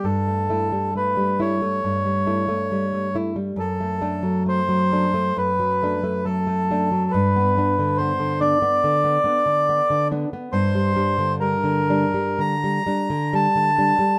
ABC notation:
X:1
M:4/4
L:1/16
Q:1/4=68
K:G
V:1 name="Bandoneon"
A4 B2 ^c8 z2 | A4 c4 B4 A4 | B4 c2 d8 z2 | [K:Gm] c4 B4 b4 a4 |]
V:2 name="Nylon-string guitar"
G,, A, [A,E] G, A, G, [A,E] A, G,, G, [A,E] A, G, A, [A,E] G, | F,, A, [A,D] F, A, F, [A,D] A, F,, F, [A,D] A, F, A, [A,D] F, | G,, B, [B,D] D, B, D, [B,D] B, D, B, [B,D] D, B, D, [B,D] B, | [K:Gm] G,, G, [G,D] D, G, D, [G,D] G, D, G, [G,D] D, G, D, [G,D] G, |]